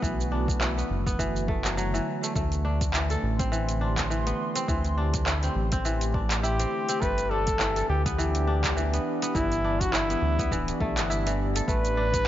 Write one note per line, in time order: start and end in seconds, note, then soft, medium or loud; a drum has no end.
0.00 0.84 B1 medium
0.00 7.02 D3 medium
0.00 1.18 E3 medium
0.00 7.01 A3 medium
0.00 0.77 B3 medium
0.00 2.36 B3 medium
0.00 0.31 D4 medium
0.00 2.36 F#4 medium
0.00 2.36 B4 medium
0.00 kick loud
0.00 shaker medium
0.21 shaker soft
0.32 2.00 D4 medium
0.48 kick loud
0.48 shaker medium
0.61 2.17 E4 medium
0.61 clap medium
0.61 shaker medium
0.78 1.06 B3 medium
0.78 shaker soft
0.90 2.00 F#1 loud
1.07 2.93 B3 medium
1.07 kick loud
1.07 shaker medium
1.19 1.93 E3 medium
1.19 kick medium
1.19 shaker medium
1.36 shaker soft
1.48 2.23 A3 medium
1.48 kick loud
1.65 1.76 F#3 medium
1.65 clap medium
1.65 shaker medium
1.77 2.41 F#3 loud
1.77 shaker medium
1.94 2.41 E3 medium
1.94 shaker soft
2.23 2.35 A3 medium
2.23 shaker medium
2.36 3.17 D2 loud
2.36 4.35 A3 medium
2.36 kick loud
2.36 shaker medium
2.52 closed hi-hat soft
2.52 shaker soft
2.65 3.81 D4 medium
2.81 kick medium
2.81 closed hi-hat soft
2.81 shaker medium
2.94 3.51 E3 medium
2.94 clap medium
2.94 shaker medium
3.06 12.28 G4 medium
3.10 4.42 A4 medium
3.10 closed hi-hat soft
3.10 shaker soft
3.19 7.02 C6 medium
3.23 4.33 A1 loud
3.39 4.33 C4 medium
3.39 kick loud
3.39 closed hi-hat soft
3.39 shaker medium
3.52 4.09 E3 loud
3.52 shaker medium
3.69 closed hi-hat soft
3.69 shaker soft
3.81 4.97 D4 medium
3.98 kick medium
3.98 clap medium
3.98 closed hi-hat medium
3.98 shaker medium
4.10 4.67 E3 medium
4.10 shaker medium
4.27 4.62 B3 medium
4.27 closed hi-hat soft
4.27 shaker soft
4.56 5.43 C4 medium
4.56 closed hi-hat medium
4.56 shaker medium
4.68 5.50 D2 medium
4.68 5.84 E3 loud
4.68 kick loud
4.68 shaker soft
4.85 closed hi-hat soft
4.85 shaker soft
4.98 6.14 D4 medium
5.14 kick loud
5.14 closed hi-hat medium
5.14 shaker medium
5.26 6.43 E4 medium
5.26 clap medium
5.26 shaker medium
5.43 5.72 C4 medium
5.43 closed hi-hat soft
5.43 shaker soft
5.56 6.66 A1 loud
5.72 6.59 C4 medium
5.72 kick loud
5.72 closed hi-hat soft
5.72 shaker medium
5.85 7.07 E3 medium
5.85 shaker soft
6.01 closed hi-hat soft
6.01 shaker soft
6.14 7.31 D4 medium
6.14 kick medium
6.31 clap medium
6.31 closed hi-hat medium
6.31 shaker medium
6.43 8.00 E4 loud
6.43 7.03 G4 loud
6.43 shaker soft
6.60 6.89 C4 medium
6.60 closed hi-hat soft
6.60 shaker soft
6.89 8.12 C4 loud
6.89 closed hi-hat medium
6.89 shaker medium
7.01 7.83 G1 medium
7.01 12.28 E3 medium
7.01 9.01 A3 medium
7.01 7.32 B4 loud
7.01 kick loud
7.01 shaker soft
7.18 closed hi-hat soft
7.18 shaker soft
7.27 12.28 D4 medium
7.27 7.89 A4 loud
7.31 8.47 D4 medium
7.47 kick medium
7.47 closed hi-hat medium
7.47 shaker medium
7.60 8.17 E3 medium
7.60 11.68 B3 medium
7.60 clap medium
7.60 shaker medium
7.76 9.08 A4 medium
7.76 closed hi-hat soft
7.76 shaker soft
7.89 8.99 D2 loud
7.89 8.02 G4 medium
7.89 12.28 D5 medium
8.06 8.93 B3 loud
8.06 kick loud
8.06 closed hi-hat medium
8.06 shaker medium
8.17 8.75 E3 loud
8.17 9.01 G4 medium
8.17 shaker medium
8.35 closed hi-hat soft
8.35 shaker soft
8.47 9.64 D4 medium
8.64 kick medium
8.64 clap medium
8.64 closed hi-hat medium
8.64 shaker medium
8.77 9.34 E3 medium
8.77 shaker soft
8.93 9.22 B3 medium
8.93 closed hi-hat soft
8.93 shaker soft
9.22 10.10 B3 medium
9.22 closed hi-hat medium
9.22 shaker medium
9.35 10.16 G1 medium
9.35 10.51 E3 medium
9.35 9.82 E4 loud
9.35 kick loud
9.35 shaker soft
9.52 closed hi-hat soft
9.52 shaker soft
9.64 11.32 D4 medium
9.80 9.94 F#4 loud
9.80 kick medium
9.80 closed hi-hat medium
9.80 shaker medium
9.93 10.80 E4 loud
9.93 11.10 E4 medium
9.93 clap medium
9.93 shaker medium
10.10 10.39 B3 medium
10.10 closed hi-hat soft
10.10 shaker soft
10.22 10.51 D2 loud
10.39 10.97 B3 loud
10.39 kick loud
10.39 closed hi-hat soft
10.39 shaker medium
10.51 10.72 D1 loud
10.51 11.26 E3 loud
10.51 kick medium
10.51 shaker medium
10.68 closed hi-hat soft
10.68 shaker soft
10.80 10.98 B1 medium
10.80 11.68 A3 loud
10.80 kick medium
10.97 11.61 G1 medium
10.97 12.28 B3 medium
10.97 clap medium
10.97 closed hi-hat medium
10.97 shaker medium
11.10 12.28 E4 loud
11.10 shaker soft
11.27 11.73 E3 medium
11.27 closed hi-hat soft
11.27 shaker soft
11.56 12.28 A4 medium
11.56 closed hi-hat medium
11.56 shaker medium
11.68 12.28 A1 loud
11.68 12.28 A3 medium
11.68 12.28 B4 loud
11.68 kick loud
11.68 shaker medium
11.79 12.28 A3 medium
11.85 closed hi-hat soft
11.85 shaker soft
11.97 12.28 D4 medium
12.14 kick loud
12.14 closed hi-hat medium
12.14 shaker medium